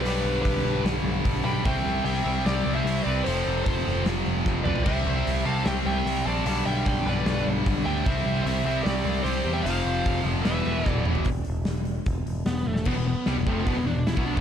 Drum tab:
CC |----------------|----------------|----------------|x---------------|
HH |o---o---o---o---|o---o---o---o---|o---o---o-------|o---o---o---o---|
SD |------o-o-------|------o-o-------|------o-o---o---|------o-o-------|
T1 |----------------|----------------|----------------|----------------|
T2 |----------------|----------------|--------------o-|----------------|
FT |----------------|----------------|---------------o|----------------|
BD |----o-------o---|o---------------|----o-------o---|o---------------|

CC |----------------|----------------|----------------|----------------|
HH |o---o---o---o---|o---o---o---o---|o---o---o-------|o-o-o-o-o-o-o---|
SD |------o-o-------|--------o-------|------o-o---o---|----o-------o--o|
T1 |----------------|----------------|-------------o--|--------------o-|
T2 |----------------|----------------|--------------o-|----------------|
FT |----------------|----------------|---------------o|----------------|
BD |----o-------o---|o---------------|----o-------o---|o-------o-------|

CC |x---------------|
HH |----o---o---o---|
SD |----o-------o---|
T1 |----------------|
T2 |----------------|
FT |----------------|
BD |o-----o-o----o-o|